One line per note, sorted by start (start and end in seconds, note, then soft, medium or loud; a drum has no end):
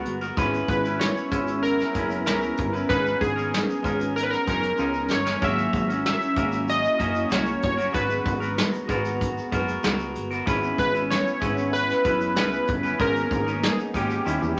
0.00 0.22 G#3 medium
0.00 0.34 G#3 medium
0.00 0.22 B3 medium
0.00 0.35 B3 medium
0.00 0.18 F#4 medium
0.00 0.21 F#4 medium
0.00 0.34 F#4 medium
0.00 0.20 A#4 medium
0.00 0.34 A#5 medium
0.05 0.31 G1 loud
0.05 closed hi-hat medium
0.21 0.37 B3 soft
0.21 0.38 F#4 soft
0.21 0.37 A#4 medium
0.21 closed hi-hat soft
0.21 shaker soft
0.36 0.63 G#1 loud
0.36 0.84 G#3 medium
0.36 5.38 B3 medium
0.36 2.87 C#4 medium
0.36 0.85 C#4 medium
0.36 2.87 E4 medium
0.36 0.84 E4 loud
0.36 0.83 B4 loud
0.36 kick loud
0.36 closed hi-hat medium
0.36 shaker medium
0.53 closed hi-hat soft
0.53 shaker soft
0.68 1.06 G#1 loud
0.68 1.02 B4 medium
0.68 kick loud
0.68 closed hi-hat medium
0.68 shaker soft
0.84 1.30 C#4 soft
0.84 1.31 E4 soft
0.84 1.32 B4 medium
0.84 closed hi-hat soft
0.84 shaker soft
0.99 1.59 C#5 medium
0.99 snare medium
0.99 shaker medium
1.16 shaker soft
1.31 1.82 G#1 medium
1.31 1.94 G#3 medium
1.31 1.96 C#4 medium
1.31 1.95 E4 medium
1.31 kick medium
1.31 closed hi-hat medium
1.31 shaker medium
1.47 closed hi-hat medium
1.47 shaker soft
1.63 2.25 A#4 loud
1.63 closed hi-hat medium
1.63 shaker medium
1.80 snare soft
1.80 shaker medium
1.94 2.28 F#1 medium
1.94 2.25 G#3 medium
1.94 2.26 C#4 medium
1.94 2.27 E4 medium
1.94 kick medium
1.94 closed hi-hat medium
1.94 shaker soft
2.10 closed hi-hat soft
2.10 shaker soft
2.26 2.52 C#2 medium
2.26 2.74 G#3 medium
2.26 2.74 C#4 medium
2.26 2.73 E4 medium
2.26 2.92 A#4 medium
2.26 snare loud
2.26 shaker medium
2.41 closed hi-hat soft
2.41 shaker soft
2.57 2.84 G1 medium
2.57 kick medium
2.57 closed hi-hat medium
2.73 2.89 C#4 soft
2.73 2.90 E4 medium
2.73 2.89 B4 medium
2.73 closed hi-hat soft
2.73 shaker soft
2.89 3.15 G#1 loud
2.89 3.37 G#3 medium
2.89 7.91 C#4 medium
2.89 3.37 C#4 medium
2.89 5.40 D#4 medium
2.89 3.36 D#4 medium
2.89 3.22 B4 loud
2.89 kick loud
2.89 closed hi-hat medium
2.89 shaker medium
3.06 closed hi-hat soft
3.06 shaker medium
3.21 3.59 G#1 loud
3.21 4.12 G#4 medium
3.21 kick medium
3.21 closed hi-hat medium
3.21 shaker soft
3.36 3.83 C#4 soft
3.36 3.84 D#4 soft
3.36 3.84 A#4 soft
3.36 closed hi-hat soft
3.36 shaker soft
3.54 snare medium
3.54 shaker medium
3.70 shaker soft
3.83 4.35 G#1 loud
3.83 4.46 G#3 medium
3.83 4.48 C#4 medium
3.83 4.47 D#4 medium
3.83 4.48 A#4 medium
3.83 kick medium
3.83 closed hi-hat medium
3.83 shaker medium
4.00 closed hi-hat medium
4.00 shaker soft
4.16 4.23 A#4 loud
4.16 closed hi-hat loud
4.16 shaker soft
4.23 4.30 B4 medium
4.30 4.48 A#4 loud
4.30 snare soft
4.30 closed hi-hat soft
4.30 shaker soft
4.47 4.73 F#1 loud
4.47 4.76 G#3 medium
4.47 4.77 C#4 medium
4.47 4.78 D#4 medium
4.47 4.79 A#4 medium
4.47 5.13 A#4 medium
4.47 kick medium
4.47 closed hi-hat medium
4.47 shaker soft
4.62 closed hi-hat medium
4.62 shaker soft
4.78 5.12 C#2 loud
4.78 5.26 G#3 medium
4.78 5.26 C#4 medium
4.78 5.25 D#4 medium
4.78 5.24 A#4 medium
4.78 shaker medium
4.93 shaker soft
5.11 5.36 G1 medium
5.11 5.44 C#5 loud
5.11 snare medium
5.11 shaker soft
5.25 5.41 C#4 soft
5.25 5.42 D#4 medium
5.25 5.42 A#4 medium
5.25 snare medium
5.25 shaker soft
5.41 5.67 G#1 loud
5.41 7.91 F#3 medium
5.41 5.89 F#3 medium
5.41 5.89 A#3 medium
5.41 5.89 C#4 medium
5.41 7.92 E4 medium
5.41 5.88 F#4 medium
5.41 5.87 A#4 loud
5.41 6.05 E5 loud
5.41 kick loud
5.41 closed hi-hat medium
5.41 shaker medium
5.58 closed hi-hat soft
5.58 shaker medium
5.73 6.11 G#1 loud
5.73 kick medium
5.73 closed hi-hat medium
5.73 shaker soft
5.88 6.36 C#4 soft
5.88 6.36 F#4 soft
5.88 6.36 A#4 medium
5.88 closed hi-hat soft
5.88 shaker soft
6.06 6.65 E5 loud
6.06 snare loud
6.06 shaker medium
6.21 closed hi-hat soft
6.21 shaker soft
6.36 6.87 G#1 loud
6.36 6.98 A#3 medium
6.36 6.98 C#4 medium
6.36 6.99 F#4 medium
6.36 7.00 A#4 medium
6.36 kick loud
6.36 closed hi-hat medium
6.36 shaker medium
6.52 closed hi-hat medium
6.52 shaker soft
6.68 7.28 D#5 loud
6.68 closed hi-hat loud
6.68 shaker medium
6.84 shaker medium
6.98 7.25 F#1 medium
6.98 7.28 A#3 medium
6.98 7.29 C#4 medium
6.98 7.30 F#4 medium
6.98 7.30 A#4 medium
6.98 kick medium
6.98 closed hi-hat medium
6.98 shaker soft
7.14 closed hi-hat medium
7.14 shaker soft
7.30 7.57 C#2 medium
7.30 7.78 A#3 medium
7.30 7.78 C#4 medium
7.30 7.77 F#4 medium
7.30 7.76 A#4 medium
7.30 7.63 C#5 medium
7.30 snare loud
7.30 shaker medium
7.46 closed hi-hat soft
7.46 shaker soft
7.62 7.89 G1 medium
7.62 7.96 C#5 loud
7.62 kick loud
7.62 closed hi-hat medium
7.77 7.93 C#4 soft
7.77 7.93 F#4 medium
7.77 7.94 A#4 medium
7.77 closed hi-hat soft
7.77 shaker soft
7.93 8.20 G#1 loud
7.93 8.41 G#3 medium
7.93 10.44 G#3 medium
7.93 10.44 B3 medium
7.93 8.41 B3 medium
7.93 10.44 F#4 medium
7.93 8.40 F#4 medium
7.93 8.54 B4 medium
7.93 10.44 A#5 medium
7.93 kick loud
7.93 closed hi-hat medium
7.93 shaker medium
8.10 closed hi-hat soft
8.10 shaker medium
8.26 8.64 G#1 loud
8.26 kick loud
8.26 closed hi-hat medium
8.26 shaker soft
8.40 8.88 B3 soft
8.40 8.88 F#4 medium
8.40 8.88 A#4 medium
8.40 closed hi-hat soft
8.40 shaker soft
8.58 snare loud
8.58 shaker medium
8.73 closed hi-hat soft
8.73 shaker soft
8.88 9.40 G#1 loud
8.88 9.51 G#3 medium
8.88 9.52 B3 medium
8.88 9.52 F#4 medium
8.88 9.52 A#4 medium
8.88 kick medium
8.88 closed hi-hat medium
8.88 shaker medium
9.05 closed hi-hat medium
9.05 shaker soft
9.21 kick medium
9.21 closed hi-hat medium
9.21 shaker medium
9.38 shaker medium
9.52 9.78 F#1 medium
9.52 9.82 G#3 medium
9.52 9.83 B3 medium
9.52 9.83 F#4 medium
9.52 9.84 A#4 medium
9.52 kick medium
9.52 closed hi-hat medium
9.52 shaker soft
9.68 closed hi-hat medium
9.68 shaker soft
9.83 10.18 C#2 medium
9.83 10.31 G#3 medium
9.83 10.31 B3 medium
9.83 10.31 F#4 medium
9.83 10.30 A#4 medium
9.83 snare loud
9.83 shaker medium
9.99 closed hi-hat soft
9.99 shaker soft
10.15 10.41 G1 loud
10.15 closed hi-hat medium
10.31 10.46 B3 medium
10.31 10.46 F#4 medium
10.31 10.47 A#4 medium
10.31 closed hi-hat soft
10.31 shaker soft
10.46 10.72 G#1 loud
10.46 10.94 G#3 medium
10.46 14.22 B3 medium
10.46 10.94 C#4 loud
10.46 12.97 C#4 medium
10.46 10.94 E4 medium
10.46 12.97 E4 medium
10.46 10.93 B4 loud
10.46 kick loud
10.46 closed hi-hat medium
10.46 shaker medium
10.63 shaker medium
10.78 11.16 G#1 loud
10.78 10.93 B4 loud
10.78 kick medium
10.78 closed hi-hat medium
10.78 shaker soft
10.94 11.40 C#4 soft
10.94 11.40 E4 soft
10.94 11.41 B4 medium
10.94 closed hi-hat soft
10.94 shaker soft
11.10 11.75 C#5 medium
11.10 snare medium
11.10 shaker medium
11.27 shaker soft
11.40 11.92 G#1 loud
11.40 12.03 G#3 medium
11.40 12.05 C#4 medium
11.40 12.05 E4 medium
11.40 12.06 B4 medium
11.40 kick medium
11.40 closed hi-hat medium
11.40 shaker soft
11.57 closed hi-hat medium
11.57 shaker soft
11.73 12.35 B4 loud
11.73 closed hi-hat loud
11.73 shaker medium
11.90 snare soft
11.90 shaker medium
12.04 12.38 F#1 medium
12.04 12.34 G#3 medium
12.04 12.35 C#4 medium
12.04 12.36 E4 medium
12.04 12.36 B4 medium
12.04 kick loud
12.04 closed hi-hat medium
12.04 shaker soft
12.20 closed hi-hat medium
12.20 shaker soft
12.35 12.62 C#2 medium
12.35 12.83 G#3 medium
12.35 12.84 C#4 medium
12.35 12.83 E4 medium
12.35 13.01 B4 loud
12.35 12.82 B4 medium
12.35 snare loud
12.35 shaker medium
12.52 closed hi-hat soft
12.52 shaker soft
12.67 12.94 G1 medium
12.67 kick loud
12.67 closed hi-hat medium
12.83 12.98 C#4 medium
12.83 12.99 E4 medium
12.83 12.99 B4 medium
12.83 closed hi-hat soft
12.83 shaker soft
12.99 13.25 G#1 loud
12.99 13.47 G#3 medium
12.99 14.25 A#3 medium
12.99 13.47 C#4 medium
12.99 14.24 D#4 medium
12.99 13.46 D#4 medium
12.99 13.45 A#4 medium
12.99 13.65 A#4 loud
12.99 kick loud
12.99 closed hi-hat medium
12.99 shaker medium
13.15 closed hi-hat soft
13.15 shaker soft
13.31 13.69 G#1 loud
13.31 kick loud
13.31 closed hi-hat medium
13.31 shaker soft
13.46 13.94 C#4 medium
13.46 13.94 D#4 medium
13.46 13.94 A#4 medium
13.46 closed hi-hat soft
13.46 shaker soft
13.63 13.77 G#4 medium
13.63 snare medium
13.63 shaker medium
13.79 closed hi-hat soft
13.79 shaker soft
13.94 14.20 G#1 loud
13.94 14.25 G#3 medium
13.94 14.25 C#4 medium
13.94 14.26 D#4 medium
13.94 14.60 G4 medium
13.94 14.27 A#4 medium
13.94 kick medium
13.94 closed hi-hat medium
13.94 shaker medium
14.10 closed hi-hat medium
14.10 shaker soft
14.25 14.39 D#2 loud
14.25 14.60 D#3 medium
14.25 14.55 D#3 medium
14.25 14.56 G3 medium
14.25 14.60 C#4 medium
14.25 14.57 C#4 medium
14.25 14.57 E4 medium
14.25 14.60 G4 medium
14.25 14.60 E5 medium
14.25 closed hi-hat medium
14.25 shaker medium
14.42 14.54 E2 medium
14.42 shaker soft
14.57 14.60 D#3 medium